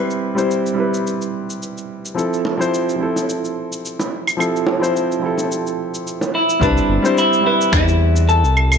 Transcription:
Already playing: grand piano G3 C4 E4 B4 C5
0.11 cabasa
0.35 grand piano G3 C4 E4 C5, cabasa
0.51 cabasa
0.66 cabasa
0.74 grand piano G3 C4
0.78 grand piano E4 B4
0.94 cabasa
1.07 cabasa
1.22 cabasa
1.50 cabasa
1.63 cabasa
1.78 cabasa
2.05 cabasa
2.15 grand piano F3 C4 E4 A4, cabasa
2.33 cabasa
2.45 high bongo
2.57 grand piano F3 C4 E4 C5
2.62 cabasa
2.74 cabasa
2.89 cabasa
2.96 grand piano F3 C4
3.00 grand piano E4 A4
3.16 high bongo, cabasa
3.29 cabasa
3.45 cabasa
3.72 cabasa
3.85 cabasa
4.00 high bongo, cabasa
4.27 cabasa, claves
4.37 grand piano F3 C4 E4 A4, claves
4.41 cabasa
4.56 cabasa
4.67 high bongo
4.79 grand piano F3 C4 E4 C5
4.84 cabasa
4.96 cabasa
5.12 cabasa
5.19 grand piano F3 C4
5.23 grand piano E4 A4
5.38 high bongo, cabasa
5.52 cabasa
5.67 cabasa
5.94 cabasa
6.07 cabasa
6.21 high bongo, cabasa
6.35 clean electric guitar E4
6.50 cabasa
6.60 analog synth bass C2, grand piano G3 C4 E4 B4, clean electric guitar D4, kick, cabasa
6.77 cabasa
6.89 analog synth bass G1
7.02 grand piano G3 C4 E4 C5, cabasa
7.18 clean electric guitar E4, cabasa
7.33 cabasa
7.41 grand piano G3 C4
7.45 grand piano E4 B4, clean electric guitar E4
7.61 cabasa
7.72 analog synth bass E2, clean electric guitar E4, finger snap, kick, cabasa
7.88 cabasa
8.16 cabasa
8.29 clean electric guitar A4, cabasa
8.43 analog synth bass C2, cabasa
8.57 claves
8.72 cabasa, claves

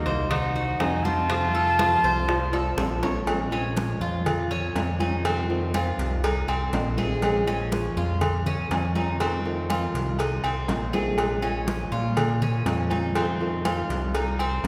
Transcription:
Already playing: nylon-string guitar D#3 A#3 D#4 F#4, trumpet A#3, flute D#5
0.06 analog synth bass C2, cuban tres C5, high conga, high timbale
0.29 trumpet D#4, flute F#5, muted nylon-string guitar stroke, high bongo, high conga, low conga, high timbale
0.55 nylon-string guitar D#4 F#4, cuban tres F#4, high conga
0.78 analog synth bass F2, nylon-string guitar C4 D#4 F#4, trumpet D#4, flute G#5, high bongo, low bongo, high conga, high timbale, low timbale
1.03 cuban tres C4, nylon-string guitar D#4 F#4, trumpet F4, flute A5, high conga
1.29 nylon-string guitar C3 F3 A3 C4 F4, cuban tres C4, high bongo, high conga, high timbale
1.54 nylon-string guitar A3 C4 F4, cuban tres A4, high conga
1.79 nylon-string guitar C3 F3 A3 C4 F4, cuban tres F4, high bongo, high conga, high timbale, low timbale
2.04 analog synth bass C2, cuban tres C5, high bongo, high conga
2.28 muted nylon-string guitar stroke, high bongo, high conga, high timbale
2.53 nylon-string guitar A3 C4 F4, cuban tres A4, high bongo, high conga, high timbale
2.77 analog synth bass A#1, nylon-string guitar C3 F3 A3 C4 F4, high bongo, high conga, low timbale
3.02 nylon-string guitar A3 C4 F4, cuban tres C#5, low bongo, high conga, low timbale
3.26 nylon-string guitar F3 G#3 C#4 F4, cowbell, high conga, low agogo
3.51 nylon-string guitar G#3 C#4 F4, cuban tres C#4, high conga, low agogo
3.75 nylon-string guitar F3 G#3 C#4 F4, cowbell, high conga, low timbale
4.00 analog synth bass F2, cuban tres F4, high conga
4.25 muted nylon-string guitar stroke, cowbell, high conga, low conga, low agogo
4.51 cuban tres C#4, high conga
4.74 analog synth bass F2, nylon-string guitar F3 G#3 C#4 F4, cowbell, high conga, low timbale, low agogo
4.99 nylon-string guitar G#3 C#4 F4, cuban tres D#4, high conga, low agogo
5.24 nylon-string guitar C3 D#3 A3 C4 F4, cuban tres C4, cowbell, high conga, low agogo
5.49 nylon-string guitar D#3 A3 C4 F4, high conga
5.74 nylon-string guitar D#3 A3 C4 F4, cuban tres F4, cowbell, high conga, low timbale, low agogo
5.98 analog synth bass C2, cowbell, high conga
6.23 cuban tres D#4, muted nylon-string guitar stroke, cowbell, high conga, low agogo
6.48 analog synth bass C2, cuban tres C4, high conga, low agogo
6.73 analog synth bass A#1, nylon-string guitar D#3 A3 C4 F4, cowbell, high conga, low timbale
6.97 nylon-string guitar D#3 A3 C4 F4, cuban tres G#4, high conga, low agogo
7.22 nylon-string guitar F3 G#3 C#4 F4, cowbell, high conga, low agogo
7.46 nylon-string guitar G#3 C#4 F4, cuban tres C#4, high conga, low agogo
7.71 nylon-string guitar F3 G#3 C#4 F4, cowbell, high conga, low timbale
7.97 analog synth bass F2, cuban tres F4, high conga
8.21 muted nylon-string guitar stroke, cowbell, high conga, low conga, low agogo
8.46 cuban tres C#4, high conga, low conga
8.70 analog synth bass F2, nylon-string guitar F3 G#3 C#4 F4, cowbell, high conga, low timbale, low agogo
8.95 nylon-string guitar G#3 C#4 F4, cuban tres D#4, high conga, low agogo
9.20 nylon-string guitar C3 D#3 A3 C4 F4, cuban tres C4, cowbell, high conga, low agogo
9.45 nylon-string guitar D#3 A3 C4 F4, high conga
9.69 nylon-string guitar D#3 A3 C4 F4, cuban tres F4, cowbell, high conga, low timbale, low agogo
9.94 analog synth bass C2, cowbell, high conga
10.19 cuban tres D#4, muted nylon-string guitar stroke, cowbell, low agogo
10.44 analog synth bass C2, cuban tres C4, high conga, low agogo
10.68 analog synth bass A#1, nylon-string guitar D#3 A3 C4 F4, cowbell, high conga, low timbale
10.93 nylon-string guitar D#3 A3 C4 F4, cuban tres G#4, high conga, low agogo
11.18 nylon-string guitar F3 G#3 C#4 F4, cowbell, high conga, low agogo
11.42 nylon-string guitar G#3 C#4 F4, cuban tres C#4, high conga, low agogo
11.67 nylon-string guitar F3 G#3 C#4 F4, cowbell, high conga, low timbale
11.92 analog synth bass A#2, cuban tres F4, high conga
12.16 muted nylon-string guitar stroke, cowbell, high conga, low conga, low agogo
12.42 cuban tres C#4, high conga, low conga
12.65 analog synth bass F2, nylon-string guitar F3 G#3 C#4 F4, cowbell, high conga, low timbale, low agogo
12.90 nylon-string guitar G#3 C#4 F4, cuban tres D#4, high conga, low agogo
13.15 nylon-string guitar C3 D#3 A3 C4 F4, cuban tres C4, cowbell, high conga, low agogo
13.40 nylon-string guitar D#3 A3 C4 F4, high conga
13.65 nylon-string guitar D#3 A3 C4 F4, cuban tres F4, cowbell, high conga, low timbale, low agogo
13.89 analog synth bass C2, cowbell, high conga
14.14 cuban tres D#4, muted nylon-string guitar stroke, cowbell, low agogo
14.39 cuban tres C4, high conga, low agogo
14.64 analog synth bass A#1, nylon-string guitar D#3, low timbale

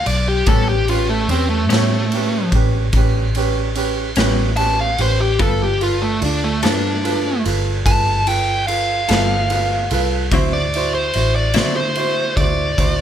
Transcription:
0.06 fingered electric bass B1, lead electric guitar D5, ride
0.28 lead electric guitar G4
0.46 fingered electric bass A1, clean electric guitar A2 G3 B3 C#4, grand piano C#4 G4 B4, lead electric guitar A4, kick, ride
0.69 lead electric guitar G4
0.88 grand piano C#4 G4 B4, lead electric guitar F4, ride
1.09 lead electric guitar A3
1.29 fingered electric bass E2, lead electric guitar C4, grand piano C#4 G4 B4, ride
1.50 lead electric guitar A3
1.69 fingered electric bass A2, clean electric guitar A2 G3 B3 C#4, lead electric guitar A3, grand piano C#4 G4, ride
1.73 grand piano C#5, snare
2.12 grand piano C#4 G4 B4, ride
2.52 fingered electric bass A1, grand piano C#4 G4 B4, kick, ride
2.93 fingered electric bass A1, grand piano C#4 G4, kick, ride
2.97 grand piano B4
3.35 grand piano C#4 G4 B4, ride
3.75 grand piano C#4 G4 B4, ride
4.16 fingered electric bass A1, clean electric guitar A2 G3 B3 C#4, grand piano C#4 G4 B4, snare, ride
4.56 grand piano C#4 G4 B4, lead electric guitar A5, ride
4.81 lead electric guitar F5
4.98 fingered electric bass A1, grand piano C#4 G4 B4, lead electric guitar C5, ride
5.20 lead electric guitar G4
5.39 fingered electric bass G1, clean electric guitar G3 B3 F4 A4, grand piano F4 A4 B4, lead electric guitar A4, kick, ride
5.63 lead electric guitar G4
5.80 grand piano F4 A4 B4, lead electric guitar F4, ride
6.02 lead electric guitar A3
6.21 fingered electric bass D2, lead electric guitar D4, grand piano F4 A4 D5, ride
6.44 lead electric guitar A3
6.63 fingered electric bass G2, clean electric guitar G3 B3 F4 A4, lead electric guitar D4, grand piano F4 A4 B4, snare, ride
7.04 grand piano F4 A4 B4, ride
7.45 fingered electric bass G1, grand piano F4 A4 B4, ride
7.86 fingered electric bass G1, grand piano F4 A4 B4, lead electric guitar A5, kick, ride
8.27 grand piano F4 A4 B4, lead electric guitar G5, ride
8.67 grand piano F4 A4 B4, lead electric guitar F5, ride
9.08 fingered electric bass G1, clean electric guitar G3 B3 F4 A4, grand piano F4 A4 B4, snare, ride
9.50 grand piano F4 A4 B4, ride
9.91 fingered electric bass C2, grand piano F4 A4 B4, ride
10.31 fingered electric bass D2, clean electric guitar D3 F#3 C4 E4, grand piano E4 F#4 C5, kick, ride
10.53 lead electric guitar D5
10.74 grand piano E4 F#4 C5, ride
10.95 lead electric guitar C5
11.13 fingered electric bass A1, grand piano E4 F#4 C5, ride
11.36 lead electric guitar D5
11.54 clean electric guitar D3 F#3 C4 E4, fingered electric bass D3, grand piano E4 F#4 C5, snare, ride
11.76 lead electric guitar C5
11.95 grand piano E4 F#4 C5, ride
12.37 fingered electric bass D2, grand piano E4 F#4 C5, lead electric guitar D5, kick, ride
12.78 fingered electric bass D2, grand piano E4 F#4 C5, kick, ride

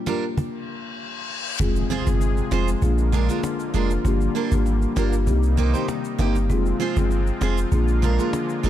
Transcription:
Already playing: analog synth pad A#2 F3 G3 D4 G4
0.06 steel-string acoustic guitar G3 D4 F4 A#4, marimba A#3 D4 F4 G4, cajon slap
0.37 cajon bass, cajon slap, reverse cymbal
1.60 sub bass F1, analog synth pad C3 F3 G#3 F4 G#4, marimba G#3 C4 F4 G#4, cajon bass, impact, shaker
1.76 shaker
1.90 steel-string acoustic guitar C4 F4 G#4 C5
2.06 sub bass G1, marimba G#3 C4 F4 G#4, cajon bass, shaker
2.21 cajon slap, shaker
2.37 shaker
2.51 sub bass F1, marimba G#3 C4 F4 G#4, steel-string acoustic guitar C4 F4 G#4 C5, cajon slap, shaker
2.68 shaker
2.82 sub bass A#1, analog synth pad D3 A#3, marimba A#3 D4 F4 G#4, cajon bass, shaker
2.98 shaker
3.12 steel-string acoustic guitar G#3 D4 F4 A#4, cajon bass, shaker
3.29 steel-string acoustic guitar G#3 D4 F4 A#4, marimba A#3 D4 F4 G#4, shaker
3.43 cajon slap, shaker
3.60 shaker
3.74 sub bass F1, steel-string acoustic guitar G#3 D4 F4 A#4, marimba A#3 D4 F4 G#4, shaker
3.90 shaker
4.04 sub bass G1, analog synth pad D3 G3, marimba A#3 D4 F4 G4, cajon bass, shaker
4.21 shaker
4.35 steel-string acoustic guitar A#3 D4 F4 A#4
4.51 sub bass G#1, marimba A#3 D4 F4 G4, cajon bass, shaker
4.66 cajon slap, shaker
4.82 shaker
4.96 sub bass G1, steel-string acoustic guitar A#3 D4 F4 A#4, marimba A#3 D4 F4 G4, cajon slap, shaker
5.13 shaker
5.27 sub bass C2, analog synth pad C3 D#3 D#4, marimba A#3 C4 D#4 G4, cajon bass, shaker
5.43 shaker
5.57 steel-string acoustic guitar A#3 D#4 G4 C5, cajon bass, cajon slap, shaker
5.74 marimba A#3 C4 D#4 G4, steel-string acoustic guitar A#3 D#4 G4 C5, shaker
5.88 cajon slap, shaker
6.05 shaker
6.18 sub bass G1, steel-string acoustic guitar A#3 D#4 G4 C5, marimba A#3 C4 D#4 G4, cajon bass, high timbale, shaker
6.35 cajon slap, shaker
6.49 sub bass F1, analog synth pad C3 F3 G#3 C4 F4, marimba G#3 C4 F4 G#4, cajon bass, swell, shaker
6.66 shaker
6.80 steel-string acoustic guitar C4 F4 G#4 C5
6.96 sub bass G1, marimba G#3 C4 F4 G#4, cajon bass, shaker
7.11 cajon slap, shaker
7.27 shaker
7.41 sub bass F1, marimba G#3 C4 F4 G#4, steel-string acoustic guitar C4 F4 G#4 C5, cajon slap, shaker
7.58 shaker
7.72 sub bass A#1, analog synth pad D3 G#3 A#3, marimba A#3 D4 F4 G#4, cajon bass, shaker
7.88 shaker
8.02 steel-string acoustic guitar G#3 D4 F4 A#4, cajon bass, shaker
8.18 steel-string acoustic guitar G#3 D4 F4 A#4, marimba A#3 D4 F4 G#4, shaker
8.33 cajon slap, shaker
8.49 shaker
8.63 sub bass F1, steel-string acoustic guitar G#3 D4 F4 A#4, marimba A#3 D4 F4 G#4, shaker

